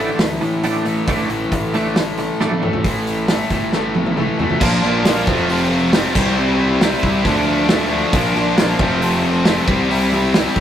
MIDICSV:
0, 0, Header, 1, 6, 480
1, 0, Start_track
1, 0, Tempo, 441176
1, 1173, Time_signature, 4, 2, 24, 8
1, 11534, End_track
2, 0, Start_track
2, 0, Title_t, "Distorted electric guitar"
2, 0, Program_c, 0, 30
2, 0, Note_on_c, 0, 45, 85
2, 0, Note_on_c, 0, 52, 84
2, 0, Note_on_c, 0, 57, 89
2, 914, Note_off_c, 0, 57, 0
2, 918, Note_on_c, 0, 57, 79
2, 927, Note_off_c, 0, 52, 0
2, 931, Note_on_c, 0, 52, 68
2, 939, Note_off_c, 0, 45, 0
2, 943, Note_on_c, 0, 45, 72
2, 1167, Note_off_c, 0, 45, 0
2, 1177, Note_off_c, 0, 52, 0
2, 1186, Note_off_c, 0, 57, 0
2, 2848, Note_on_c, 0, 57, 89
2, 2856, Note_on_c, 0, 52, 77
2, 2868, Note_on_c, 0, 45, 70
2, 3075, Note_off_c, 0, 45, 0
2, 3078, Note_off_c, 0, 57, 0
2, 3082, Note_off_c, 0, 52, 0
2, 5031, Note_on_c, 0, 65, 100
2, 5499, Note_off_c, 0, 65, 0
2, 5512, Note_on_c, 0, 65, 105
2, 5714, Note_off_c, 0, 65, 0
2, 5727, Note_on_c, 0, 65, 100
2, 6454, Note_off_c, 0, 65, 0
2, 6467, Note_on_c, 0, 65, 97
2, 6686, Note_off_c, 0, 65, 0
2, 7644, Note_on_c, 0, 64, 80
2, 7654, Note_on_c, 0, 60, 69
2, 7663, Note_on_c, 0, 55, 66
2, 7873, Note_off_c, 0, 64, 0
2, 7878, Note_off_c, 0, 60, 0
2, 7880, Note_off_c, 0, 55, 0
2, 11486, Note_on_c, 0, 64, 77
2, 11491, Note_on_c, 0, 60, 68
2, 11534, Note_off_c, 0, 60, 0
2, 11534, Note_off_c, 0, 64, 0
2, 11534, End_track
3, 0, Start_track
3, 0, Title_t, "Overdriven electric guitar"
3, 0, Program_c, 1, 29
3, 0, Note_on_c, 1, 52, 75
3, 0, Note_on_c, 1, 57, 84
3, 7, Note_on_c, 1, 45, 66
3, 1157, Note_off_c, 1, 45, 0
3, 1161, Note_on_c, 1, 45, 92
3, 1179, Note_off_c, 1, 52, 0
3, 1183, Note_on_c, 1, 52, 98
3, 1196, Note_off_c, 1, 57, 0
3, 1201, Note_on_c, 1, 57, 95
3, 1872, Note_off_c, 1, 57, 0
3, 1874, Note_off_c, 1, 45, 0
3, 1885, Note_off_c, 1, 52, 0
3, 1885, Note_on_c, 1, 57, 82
3, 1903, Note_on_c, 1, 52, 79
3, 1917, Note_on_c, 1, 45, 68
3, 3077, Note_off_c, 1, 57, 0
3, 3085, Note_off_c, 1, 45, 0
3, 3086, Note_off_c, 1, 52, 0
3, 3098, Note_on_c, 1, 45, 86
3, 3107, Note_on_c, 1, 52, 91
3, 3113, Note_on_c, 1, 57, 97
3, 3569, Note_off_c, 1, 45, 0
3, 3574, Note_off_c, 1, 52, 0
3, 3577, Note_off_c, 1, 57, 0
3, 3582, Note_on_c, 1, 45, 76
3, 3587, Note_on_c, 1, 52, 93
3, 3590, Note_on_c, 1, 57, 94
3, 3803, Note_off_c, 1, 45, 0
3, 3810, Note_off_c, 1, 52, 0
3, 3816, Note_on_c, 1, 45, 85
3, 3820, Note_off_c, 1, 57, 0
3, 3823, Note_on_c, 1, 52, 92
3, 3833, Note_on_c, 1, 57, 89
3, 4040, Note_off_c, 1, 45, 0
3, 4051, Note_off_c, 1, 52, 0
3, 4053, Note_on_c, 1, 45, 94
3, 4056, Note_off_c, 1, 57, 0
3, 4064, Note_on_c, 1, 52, 100
3, 4069, Note_on_c, 1, 57, 106
3, 4526, Note_off_c, 1, 45, 0
3, 4535, Note_off_c, 1, 52, 0
3, 4539, Note_off_c, 1, 57, 0
3, 4539, Note_on_c, 1, 45, 93
3, 4548, Note_on_c, 1, 52, 95
3, 4552, Note_on_c, 1, 57, 91
3, 4769, Note_off_c, 1, 45, 0
3, 4772, Note_off_c, 1, 52, 0
3, 4778, Note_off_c, 1, 57, 0
3, 4782, Note_on_c, 1, 45, 86
3, 4785, Note_on_c, 1, 52, 87
3, 4791, Note_on_c, 1, 57, 88
3, 5004, Note_off_c, 1, 45, 0
3, 5007, Note_off_c, 1, 52, 0
3, 5008, Note_on_c, 1, 46, 102
3, 5010, Note_off_c, 1, 57, 0
3, 5022, Note_on_c, 1, 53, 102
3, 5031, Note_on_c, 1, 58, 100
3, 5041, Note_on_c, 1, 62, 110
3, 5234, Note_off_c, 1, 62, 0
3, 5247, Note_on_c, 1, 62, 75
3, 5250, Note_off_c, 1, 58, 0
3, 5263, Note_on_c, 1, 58, 74
3, 5265, Note_off_c, 1, 53, 0
3, 5278, Note_on_c, 1, 53, 56
3, 5465, Note_off_c, 1, 46, 0
3, 5477, Note_off_c, 1, 53, 0
3, 5478, Note_on_c, 1, 46, 80
3, 5490, Note_on_c, 1, 53, 80
3, 5494, Note_off_c, 1, 58, 0
3, 5503, Note_off_c, 1, 62, 0
3, 5507, Note_on_c, 1, 58, 88
3, 5516, Note_on_c, 1, 62, 81
3, 5713, Note_off_c, 1, 46, 0
3, 5719, Note_off_c, 1, 53, 0
3, 5722, Note_off_c, 1, 62, 0
3, 5727, Note_off_c, 1, 58, 0
3, 5727, Note_on_c, 1, 60, 88
3, 5735, Note_on_c, 1, 57, 90
3, 5743, Note_on_c, 1, 53, 78
3, 5754, Note_on_c, 1, 48, 80
3, 5762, Note_on_c, 1, 41, 71
3, 5947, Note_off_c, 1, 41, 0
3, 5959, Note_off_c, 1, 48, 0
3, 5961, Note_on_c, 1, 41, 102
3, 5966, Note_off_c, 1, 53, 0
3, 5972, Note_off_c, 1, 57, 0
3, 5972, Note_on_c, 1, 48, 94
3, 5979, Note_off_c, 1, 60, 0
3, 5979, Note_on_c, 1, 53, 112
3, 5985, Note_on_c, 1, 57, 106
3, 5992, Note_on_c, 1, 60, 107
3, 6187, Note_off_c, 1, 60, 0
3, 6200, Note_on_c, 1, 60, 70
3, 6203, Note_off_c, 1, 57, 0
3, 6216, Note_on_c, 1, 57, 79
3, 6220, Note_off_c, 1, 53, 0
3, 6233, Note_on_c, 1, 53, 58
3, 6432, Note_off_c, 1, 48, 0
3, 6445, Note_on_c, 1, 48, 80
3, 6447, Note_off_c, 1, 41, 0
3, 6447, Note_off_c, 1, 53, 0
3, 6453, Note_off_c, 1, 57, 0
3, 6460, Note_on_c, 1, 53, 76
3, 6465, Note_off_c, 1, 60, 0
3, 6466, Note_on_c, 1, 57, 84
3, 6478, Note_on_c, 1, 60, 88
3, 6675, Note_off_c, 1, 48, 0
3, 6683, Note_off_c, 1, 53, 0
3, 6684, Note_off_c, 1, 60, 0
3, 6686, Note_off_c, 1, 57, 0
3, 6689, Note_on_c, 1, 64, 109
3, 6699, Note_on_c, 1, 60, 84
3, 6711, Note_on_c, 1, 55, 97
3, 6722, Note_on_c, 1, 48, 81
3, 6917, Note_off_c, 1, 48, 0
3, 6930, Note_on_c, 1, 48, 101
3, 6935, Note_off_c, 1, 55, 0
3, 6942, Note_off_c, 1, 60, 0
3, 6948, Note_on_c, 1, 55, 96
3, 6952, Note_off_c, 1, 64, 0
3, 6955, Note_on_c, 1, 60, 113
3, 6965, Note_on_c, 1, 64, 110
3, 7155, Note_off_c, 1, 64, 0
3, 7168, Note_on_c, 1, 64, 77
3, 7177, Note_off_c, 1, 60, 0
3, 7187, Note_off_c, 1, 55, 0
3, 7190, Note_on_c, 1, 60, 68
3, 7200, Note_on_c, 1, 55, 61
3, 7385, Note_off_c, 1, 48, 0
3, 7398, Note_on_c, 1, 48, 81
3, 7401, Note_off_c, 1, 55, 0
3, 7413, Note_off_c, 1, 60, 0
3, 7414, Note_on_c, 1, 55, 89
3, 7418, Note_off_c, 1, 64, 0
3, 7426, Note_on_c, 1, 60, 79
3, 7431, Note_on_c, 1, 64, 93
3, 7870, Note_off_c, 1, 48, 0
3, 7878, Note_off_c, 1, 55, 0
3, 7884, Note_off_c, 1, 60, 0
3, 7884, Note_on_c, 1, 50, 100
3, 7887, Note_off_c, 1, 64, 0
3, 7900, Note_on_c, 1, 53, 106
3, 7909, Note_on_c, 1, 57, 101
3, 7920, Note_on_c, 1, 62, 110
3, 8101, Note_off_c, 1, 62, 0
3, 8114, Note_on_c, 1, 62, 87
3, 8123, Note_off_c, 1, 57, 0
3, 8135, Note_off_c, 1, 53, 0
3, 8136, Note_on_c, 1, 57, 79
3, 8148, Note_on_c, 1, 53, 64
3, 8345, Note_off_c, 1, 50, 0
3, 8358, Note_on_c, 1, 50, 74
3, 8362, Note_off_c, 1, 53, 0
3, 8370, Note_off_c, 1, 57, 0
3, 8375, Note_on_c, 1, 53, 79
3, 8381, Note_off_c, 1, 62, 0
3, 8383, Note_on_c, 1, 57, 88
3, 8394, Note_on_c, 1, 62, 89
3, 8594, Note_off_c, 1, 62, 0
3, 8607, Note_on_c, 1, 62, 90
3, 8609, Note_off_c, 1, 57, 0
3, 8622, Note_on_c, 1, 57, 77
3, 8627, Note_off_c, 1, 53, 0
3, 8640, Note_on_c, 1, 53, 74
3, 8830, Note_off_c, 1, 50, 0
3, 8834, Note_off_c, 1, 62, 0
3, 8842, Note_off_c, 1, 57, 0
3, 8847, Note_off_c, 1, 53, 0
3, 8849, Note_on_c, 1, 46, 97
3, 8860, Note_on_c, 1, 53, 96
3, 8872, Note_on_c, 1, 58, 112
3, 8884, Note_on_c, 1, 62, 119
3, 9075, Note_off_c, 1, 62, 0
3, 9088, Note_on_c, 1, 62, 80
3, 9093, Note_off_c, 1, 58, 0
3, 9104, Note_off_c, 1, 53, 0
3, 9106, Note_on_c, 1, 58, 66
3, 9117, Note_on_c, 1, 53, 65
3, 9313, Note_off_c, 1, 46, 0
3, 9321, Note_off_c, 1, 53, 0
3, 9326, Note_on_c, 1, 46, 72
3, 9333, Note_off_c, 1, 58, 0
3, 9334, Note_on_c, 1, 53, 83
3, 9346, Note_off_c, 1, 62, 0
3, 9346, Note_on_c, 1, 58, 86
3, 9359, Note_on_c, 1, 62, 94
3, 9553, Note_off_c, 1, 46, 0
3, 9558, Note_off_c, 1, 53, 0
3, 9562, Note_off_c, 1, 62, 0
3, 9563, Note_off_c, 1, 58, 0
3, 9567, Note_on_c, 1, 60, 81
3, 9574, Note_on_c, 1, 57, 84
3, 9585, Note_on_c, 1, 53, 84
3, 9595, Note_on_c, 1, 48, 83
3, 9599, Note_on_c, 1, 41, 67
3, 9791, Note_off_c, 1, 41, 0
3, 9802, Note_off_c, 1, 48, 0
3, 9804, Note_on_c, 1, 41, 95
3, 9809, Note_off_c, 1, 53, 0
3, 9814, Note_off_c, 1, 57, 0
3, 9815, Note_on_c, 1, 48, 103
3, 9822, Note_off_c, 1, 60, 0
3, 9822, Note_on_c, 1, 53, 92
3, 9827, Note_on_c, 1, 57, 113
3, 9835, Note_on_c, 1, 60, 107
3, 10026, Note_off_c, 1, 60, 0
3, 10039, Note_off_c, 1, 57, 0
3, 10039, Note_on_c, 1, 60, 82
3, 10052, Note_on_c, 1, 57, 70
3, 10057, Note_off_c, 1, 53, 0
3, 10070, Note_on_c, 1, 53, 65
3, 10266, Note_off_c, 1, 48, 0
3, 10276, Note_off_c, 1, 53, 0
3, 10279, Note_on_c, 1, 48, 80
3, 10287, Note_off_c, 1, 41, 0
3, 10287, Note_off_c, 1, 57, 0
3, 10289, Note_on_c, 1, 53, 88
3, 10298, Note_off_c, 1, 60, 0
3, 10300, Note_on_c, 1, 57, 82
3, 10311, Note_on_c, 1, 60, 91
3, 10510, Note_off_c, 1, 48, 0
3, 10515, Note_off_c, 1, 53, 0
3, 10516, Note_off_c, 1, 60, 0
3, 10520, Note_off_c, 1, 57, 0
3, 10521, Note_on_c, 1, 64, 97
3, 10532, Note_on_c, 1, 60, 94
3, 10545, Note_on_c, 1, 55, 85
3, 10556, Note_on_c, 1, 48, 82
3, 10748, Note_off_c, 1, 48, 0
3, 10758, Note_off_c, 1, 55, 0
3, 10761, Note_on_c, 1, 48, 98
3, 10772, Note_off_c, 1, 60, 0
3, 10772, Note_on_c, 1, 55, 102
3, 10779, Note_off_c, 1, 64, 0
3, 10785, Note_on_c, 1, 60, 111
3, 10792, Note_on_c, 1, 64, 118
3, 10994, Note_off_c, 1, 64, 0
3, 11007, Note_on_c, 1, 64, 72
3, 11012, Note_off_c, 1, 60, 0
3, 11025, Note_on_c, 1, 60, 69
3, 11029, Note_off_c, 1, 55, 0
3, 11042, Note_on_c, 1, 55, 57
3, 11245, Note_off_c, 1, 48, 0
3, 11258, Note_on_c, 1, 48, 82
3, 11260, Note_off_c, 1, 55, 0
3, 11269, Note_off_c, 1, 60, 0
3, 11273, Note_on_c, 1, 55, 82
3, 11278, Note_off_c, 1, 64, 0
3, 11282, Note_on_c, 1, 60, 85
3, 11291, Note_on_c, 1, 64, 94
3, 11534, Note_off_c, 1, 48, 0
3, 11534, Note_off_c, 1, 55, 0
3, 11534, Note_off_c, 1, 60, 0
3, 11534, Note_off_c, 1, 64, 0
3, 11534, End_track
4, 0, Start_track
4, 0, Title_t, "Clean electric guitar"
4, 0, Program_c, 2, 27
4, 0, Note_on_c, 2, 45, 82
4, 0, Note_on_c, 2, 50, 104
4, 0, Note_on_c, 2, 57, 101
4, 198, Note_off_c, 2, 45, 0
4, 203, Note_off_c, 2, 50, 0
4, 205, Note_off_c, 2, 57, 0
4, 213, Note_on_c, 2, 45, 81
4, 217, Note_on_c, 2, 50, 87
4, 429, Note_off_c, 2, 45, 0
4, 431, Note_off_c, 2, 50, 0
4, 448, Note_on_c, 2, 45, 77
4, 452, Note_on_c, 2, 50, 71
4, 667, Note_off_c, 2, 45, 0
4, 668, Note_off_c, 2, 50, 0
4, 694, Note_on_c, 2, 45, 93
4, 700, Note_on_c, 2, 50, 90
4, 707, Note_on_c, 2, 57, 91
4, 915, Note_off_c, 2, 45, 0
4, 922, Note_off_c, 2, 50, 0
4, 926, Note_off_c, 2, 57, 0
4, 928, Note_on_c, 2, 45, 70
4, 934, Note_on_c, 2, 50, 79
4, 1147, Note_off_c, 2, 45, 0
4, 1150, Note_off_c, 2, 50, 0
4, 1180, Note_on_c, 2, 45, 93
4, 1183, Note_on_c, 2, 50, 100
4, 1188, Note_on_c, 2, 57, 99
4, 1403, Note_off_c, 2, 45, 0
4, 1404, Note_off_c, 2, 50, 0
4, 1406, Note_off_c, 2, 57, 0
4, 1418, Note_on_c, 2, 45, 72
4, 1421, Note_on_c, 2, 50, 75
4, 1632, Note_off_c, 2, 45, 0
4, 1634, Note_off_c, 2, 50, 0
4, 1663, Note_on_c, 2, 45, 72
4, 1666, Note_on_c, 2, 50, 83
4, 1875, Note_off_c, 2, 45, 0
4, 1876, Note_off_c, 2, 50, 0
4, 1897, Note_on_c, 2, 45, 84
4, 1903, Note_on_c, 2, 50, 95
4, 1908, Note_on_c, 2, 57, 99
4, 2122, Note_off_c, 2, 45, 0
4, 2125, Note_off_c, 2, 50, 0
4, 2127, Note_off_c, 2, 57, 0
4, 2140, Note_on_c, 2, 45, 73
4, 2148, Note_on_c, 2, 50, 80
4, 2354, Note_off_c, 2, 45, 0
4, 2358, Note_off_c, 2, 50, 0
4, 2379, Note_on_c, 2, 45, 74
4, 2381, Note_on_c, 2, 50, 74
4, 2593, Note_off_c, 2, 45, 0
4, 2595, Note_off_c, 2, 50, 0
4, 2618, Note_on_c, 2, 45, 85
4, 2619, Note_on_c, 2, 50, 98
4, 2627, Note_on_c, 2, 57, 89
4, 2843, Note_off_c, 2, 45, 0
4, 2843, Note_off_c, 2, 50, 0
4, 2847, Note_off_c, 2, 57, 0
4, 2861, Note_on_c, 2, 45, 74
4, 2861, Note_on_c, 2, 50, 78
4, 3075, Note_off_c, 2, 45, 0
4, 3075, Note_off_c, 2, 50, 0
4, 11534, End_track
5, 0, Start_track
5, 0, Title_t, "Fingered electric bass"
5, 0, Program_c, 3, 33
5, 208, Note_on_c, 3, 38, 89
5, 422, Note_off_c, 3, 38, 0
5, 456, Note_on_c, 3, 45, 77
5, 1090, Note_off_c, 3, 45, 0
5, 1167, Note_on_c, 3, 33, 106
5, 1382, Note_off_c, 3, 33, 0
5, 1407, Note_on_c, 3, 33, 93
5, 1622, Note_off_c, 3, 33, 0
5, 1651, Note_on_c, 3, 33, 100
5, 2501, Note_off_c, 3, 33, 0
5, 3094, Note_on_c, 3, 33, 95
5, 3731, Note_off_c, 3, 33, 0
5, 3810, Note_on_c, 3, 31, 103
5, 4661, Note_off_c, 3, 31, 0
5, 5014, Note_on_c, 3, 34, 100
5, 5227, Note_off_c, 3, 34, 0
5, 5259, Note_on_c, 3, 34, 92
5, 5681, Note_off_c, 3, 34, 0
5, 5736, Note_on_c, 3, 29, 97
5, 6582, Note_off_c, 3, 29, 0
5, 6697, Note_on_c, 3, 36, 94
5, 7541, Note_off_c, 3, 36, 0
5, 7651, Note_on_c, 3, 36, 96
5, 7863, Note_off_c, 3, 36, 0
5, 7887, Note_on_c, 3, 38, 107
5, 8735, Note_off_c, 3, 38, 0
5, 8845, Note_on_c, 3, 34, 104
5, 9059, Note_off_c, 3, 34, 0
5, 9093, Note_on_c, 3, 34, 98
5, 9515, Note_off_c, 3, 34, 0
5, 9571, Note_on_c, 3, 29, 100
5, 10417, Note_off_c, 3, 29, 0
5, 10524, Note_on_c, 3, 36, 90
5, 11374, Note_off_c, 3, 36, 0
5, 11485, Note_on_c, 3, 36, 93
5, 11534, Note_off_c, 3, 36, 0
5, 11534, End_track
6, 0, Start_track
6, 0, Title_t, "Drums"
6, 207, Note_on_c, 9, 46, 79
6, 208, Note_on_c, 9, 38, 117
6, 316, Note_off_c, 9, 46, 0
6, 317, Note_off_c, 9, 38, 0
6, 448, Note_on_c, 9, 46, 51
6, 556, Note_off_c, 9, 46, 0
6, 692, Note_on_c, 9, 46, 77
6, 800, Note_off_c, 9, 46, 0
6, 931, Note_on_c, 9, 46, 58
6, 1040, Note_off_c, 9, 46, 0
6, 1169, Note_on_c, 9, 46, 72
6, 1172, Note_on_c, 9, 36, 112
6, 1277, Note_off_c, 9, 46, 0
6, 1280, Note_off_c, 9, 36, 0
6, 1412, Note_on_c, 9, 46, 53
6, 1521, Note_off_c, 9, 46, 0
6, 1652, Note_on_c, 9, 36, 83
6, 1657, Note_on_c, 9, 46, 69
6, 1761, Note_off_c, 9, 36, 0
6, 1766, Note_off_c, 9, 46, 0
6, 1894, Note_on_c, 9, 46, 52
6, 2002, Note_off_c, 9, 46, 0
6, 2132, Note_on_c, 9, 46, 76
6, 2133, Note_on_c, 9, 38, 108
6, 2241, Note_off_c, 9, 46, 0
6, 2242, Note_off_c, 9, 38, 0
6, 2368, Note_on_c, 9, 46, 48
6, 2369, Note_on_c, 9, 38, 32
6, 2477, Note_off_c, 9, 46, 0
6, 2478, Note_off_c, 9, 38, 0
6, 2615, Note_on_c, 9, 38, 61
6, 2723, Note_off_c, 9, 38, 0
6, 2732, Note_on_c, 9, 48, 62
6, 2841, Note_off_c, 9, 48, 0
6, 2859, Note_on_c, 9, 45, 82
6, 2968, Note_off_c, 9, 45, 0
6, 2974, Note_on_c, 9, 43, 80
6, 3082, Note_off_c, 9, 43, 0
6, 3094, Note_on_c, 9, 46, 82
6, 3095, Note_on_c, 9, 36, 112
6, 3203, Note_off_c, 9, 36, 0
6, 3203, Note_off_c, 9, 46, 0
6, 3339, Note_on_c, 9, 46, 62
6, 3448, Note_off_c, 9, 46, 0
6, 3572, Note_on_c, 9, 46, 85
6, 3573, Note_on_c, 9, 38, 116
6, 3680, Note_off_c, 9, 46, 0
6, 3682, Note_off_c, 9, 38, 0
6, 3809, Note_on_c, 9, 46, 58
6, 3813, Note_on_c, 9, 36, 79
6, 3918, Note_off_c, 9, 46, 0
6, 3922, Note_off_c, 9, 36, 0
6, 4053, Note_on_c, 9, 38, 64
6, 4162, Note_off_c, 9, 38, 0
6, 4292, Note_on_c, 9, 48, 68
6, 4401, Note_off_c, 9, 48, 0
6, 4418, Note_on_c, 9, 48, 62
6, 4527, Note_off_c, 9, 48, 0
6, 4539, Note_on_c, 9, 47, 84
6, 4648, Note_off_c, 9, 47, 0
6, 4779, Note_on_c, 9, 43, 100
6, 4887, Note_off_c, 9, 43, 0
6, 4894, Note_on_c, 9, 43, 89
6, 5003, Note_off_c, 9, 43, 0
6, 5017, Note_on_c, 9, 36, 127
6, 5017, Note_on_c, 9, 49, 127
6, 5126, Note_off_c, 9, 36, 0
6, 5126, Note_off_c, 9, 49, 0
6, 5260, Note_on_c, 9, 38, 35
6, 5369, Note_off_c, 9, 38, 0
6, 5498, Note_on_c, 9, 46, 68
6, 5499, Note_on_c, 9, 38, 116
6, 5607, Note_off_c, 9, 46, 0
6, 5608, Note_off_c, 9, 38, 0
6, 5736, Note_on_c, 9, 36, 101
6, 5845, Note_off_c, 9, 36, 0
6, 5977, Note_on_c, 9, 46, 72
6, 6086, Note_off_c, 9, 46, 0
6, 6452, Note_on_c, 9, 46, 78
6, 6453, Note_on_c, 9, 38, 127
6, 6560, Note_off_c, 9, 46, 0
6, 6562, Note_off_c, 9, 38, 0
6, 6695, Note_on_c, 9, 36, 115
6, 6699, Note_on_c, 9, 57, 117
6, 6804, Note_off_c, 9, 36, 0
6, 6807, Note_off_c, 9, 57, 0
6, 7412, Note_on_c, 9, 46, 73
6, 7413, Note_on_c, 9, 38, 115
6, 7521, Note_off_c, 9, 46, 0
6, 7522, Note_off_c, 9, 38, 0
6, 7538, Note_on_c, 9, 38, 36
6, 7647, Note_off_c, 9, 38, 0
6, 7650, Note_on_c, 9, 36, 87
6, 7759, Note_off_c, 9, 36, 0
6, 7887, Note_on_c, 9, 46, 73
6, 7888, Note_on_c, 9, 36, 91
6, 7996, Note_off_c, 9, 46, 0
6, 7997, Note_off_c, 9, 36, 0
6, 8364, Note_on_c, 9, 46, 72
6, 8366, Note_on_c, 9, 38, 122
6, 8473, Note_off_c, 9, 46, 0
6, 8474, Note_off_c, 9, 38, 0
6, 8847, Note_on_c, 9, 36, 126
6, 8848, Note_on_c, 9, 46, 69
6, 8956, Note_off_c, 9, 36, 0
6, 8957, Note_off_c, 9, 46, 0
6, 9090, Note_on_c, 9, 38, 33
6, 9199, Note_off_c, 9, 38, 0
6, 9332, Note_on_c, 9, 46, 66
6, 9333, Note_on_c, 9, 38, 109
6, 9441, Note_off_c, 9, 46, 0
6, 9442, Note_off_c, 9, 38, 0
6, 9568, Note_on_c, 9, 36, 110
6, 9677, Note_off_c, 9, 36, 0
6, 9814, Note_on_c, 9, 46, 65
6, 9923, Note_off_c, 9, 46, 0
6, 10286, Note_on_c, 9, 46, 75
6, 10287, Note_on_c, 9, 38, 127
6, 10395, Note_off_c, 9, 46, 0
6, 10396, Note_off_c, 9, 38, 0
6, 10528, Note_on_c, 9, 36, 117
6, 10637, Note_off_c, 9, 36, 0
6, 10778, Note_on_c, 9, 46, 73
6, 10886, Note_off_c, 9, 46, 0
6, 11014, Note_on_c, 9, 38, 35
6, 11122, Note_off_c, 9, 38, 0
6, 11252, Note_on_c, 9, 46, 75
6, 11253, Note_on_c, 9, 38, 121
6, 11361, Note_off_c, 9, 46, 0
6, 11362, Note_off_c, 9, 38, 0
6, 11376, Note_on_c, 9, 38, 34
6, 11485, Note_off_c, 9, 38, 0
6, 11491, Note_on_c, 9, 36, 87
6, 11534, Note_off_c, 9, 36, 0
6, 11534, End_track
0, 0, End_of_file